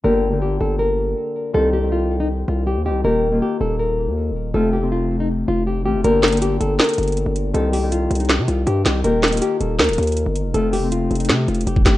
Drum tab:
HH |------------------------------------------------------------------------------------------------|------------------------------------------------------------------------------------------------|------------------------------------------------------------------------------------------------|------------------------------------------------------------------------------------------------|
CP |------------------------------------------------------------------------------------------------|------------------------------------------------------------------------------------------------|------------------------------------------------------------------------------------------------|------------------------------------------------------------------------------------------------|
SD |------------------------------------------------------------------------------------------------|------------------------------------------------------------------------------------------------|------------------------------------------------------------------------------------------------|------------------------------------------------------------------------------------------------|
BD |------------------------------------------------------------------------------------------------|------------------------------------------------------------------------------------------------|------------------------------------------------------------------------------------------------|------------------------------------------------------------------------------------------------|

HH |x-----------x--x--x--x--x-----------x-----------x--x--x--x--x--x--x--x--x-----------x-----------|x-----------o-----------x-----------x--x--x--x--x-----------x-----------x-----------x-----------|x-----------x--x--x--x--x-----------x-----------x--x--x--x--x--x--x--x--x-----------x-----------|x-----------o-----------x-----------x--x--x--x--x-----------x---x---x---x-----------x-----------|
CP |------------x-----------------------------------x-----------------------------------------------|------------------------------------------------x-----------------------------------x-----------|------------x-----------------------------------x-----------------------------------------------|------------------------------------------------x-----------------------------------x-----------|
SD |------------o-----------------------------------o-----------------------------------------------|------------------------------------------------o-----------------------------------o-----------|------------o-----------------------------------o-----------------------------------------------|------------------------------------------------o-----------------------------------o-----------|
BD |------------------------------------------------------------------------------------------------|------------------------------------------------------------------------------------------------|------------------------------------------------------------------------------------------------|------------------------------------------------------------------------------o-----o-----------|